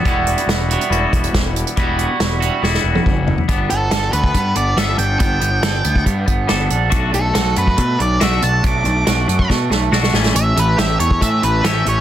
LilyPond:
<<
  \new Staff \with { instrumentName = "Lead electric guitar" } { \time 4/4 \key e \minor \tempo 4 = 140 r1 | r1 | r8 a'4 b'4 d''8 e''8 g''8 | g''2 r2 |
r8 a'4 b'4 d''8 e''8 a''8 | d'''2 r2 | e''8 b'8 e''8 cis''8 e''8 b'8 e''8 cis''8 | }
  \new Staff \with { instrumentName = "Clean electric guitar" } { \time 4/4 \key e \minor <g b e' fis'>4. <g b e' fis'>2~ <g b e' fis'>8 | <g b e' fis'>4. <g b e' fis'>2~ <g b e' fis'>8 | b8 b8 a'8 b8 b8 b8 a'8 d'8 | b8 b8 a'8 b8 b8 b8 a'8 d'8 |
a8 a8 fis'8 a8 a8 a8 fis'8 d'8 | a8 a8 fis'8 a8 a8 a8 fis'8 e8 | e8 a8 g'8 a8 e8 a8 g'8 cis'8 | }
  \new Staff \with { instrumentName = "Clean electric guitar" } { \time 4/4 \key e \minor <g b e' fis'>2 <g b e' fis'>2 | <g b e' fis'>2 <g b e' fis'>2 | <g b d'>8 <g b>8 <g b>8 <g b>8 <g b>8 <g b>8 <g b d'>8 <g b>8 | <g b>8 <g b>8 <g b>8 <g b>8 <g b>8 <g b>8 <g b d'>8 <g b>8 |
<a d' fis'>8 <a d'>8 <a d'>8 <a d'>8 <a d'>8 <a d'>8 <a d' fis'>8 <a d'>8 | <a d'>8 <a d'>8 <a d'>8 <a d'>8 <a d'>8 <a d'>8 <a d' fis'>8 <e a cis'>8 | <e a>8 <e a>8 <e a>8 <e a>8 <e a>8 <e a>8 <e a cis'>8 <e a>8 | }
  \new Staff \with { instrumentName = "Picked electric bass" } { \clef bass \time 4/4 \key e \minor e,,4 e,,4 e,,8 e,,8 e,,4 | e,,4 e,,4 e,,8 e,,8 fis,,4 | g,,8 g,,8 g,,8 d,8 g,8 g,,8 g,,8 g,,8 | g,,8 g,,8 g,,8 d,8 g,8 g,,8 g,,8 ais,,8 |
b,,8 b,,8 b,,8 fis,8 b,8 b,,8 b,,8 b,,8 | b,,8 b,,8 b,,8 fis,8 b,8 b,,8 b,,8 a,,8 | a,,8 a,,8 a,,8 e,8 a,8 a,,8 r8 a,,8 | }
  \new DrumStaff \with { instrumentName = "Drums" } \drummode { \time 4/4 <hh bd>8 hh16 hh16 <hh sn>8 hh16 hh16 hh8 <hh bd>16 hh16 <hh bd sn>8 hh16 hh16 | <hh bd>8 hh8 <hh sn>8 hh8 sn16 sn8 tommh16 <bd toml>8 tomfh16 tomfh16 | <hh bd>8 hh8 <hh sn>8 hh16 bd16 <hh bd>8 hh8 <hh sn>8 hh8 | <hh bd>8 hh8 <hh sn>8 hh16 bd16 <hh bd>8 <hh bd>8 <hh sn>8 hh8 |
<hh bd>8 hh8 <hh sn>8 hh16 bd16 <hh bd>8 hh8 <hh sn>8 hh8 | <hh bd>8 hh8 <hh sn>8 hh16 bd16 <bd sn>8 sn8 sn16 sn16 sn16 sn16 | hh8 hh8 <hh sn>8 hh16 bd16 <hh bd>8 hh8 <hh sn>8 hh8 | }
>>